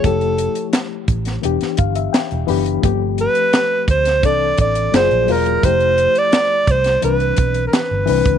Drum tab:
HH |xxxxx-xxxxxxxxox|x-xxx-xxx-xxxxox|xxxxx-xxxxxxx-ox|
SD |----o--o-o--o---|----o--o----o---|----o--o----o---|
BD |o-----o---o-----|o-----o-o-o-----|o-----o---o----o|